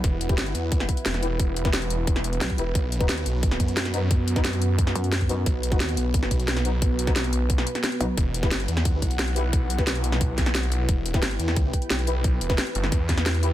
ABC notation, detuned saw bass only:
X:1
M:4/4
L:1/8
Q:1/4=177
K:Em
V:1 name="Detuned saw bass" clef=bass
E,,,2 G,,, E,,2 z E,,,2- | E,,,6 z E,,, | B,,,2 ^D,, B,,,2 F,,3- | F,,4- F,, z3 |
B,,,2 ^D,, B,,,2 B,,,3- | B,,,4- B,,, z3 | E,,,2 G,,, E,,2 B,,,3- | B,,,4- B,,, B,,,3 |
E,,,2 G,,, E,,2 z B,,,2- | B,,, E,,, z F,,, E,,4 |]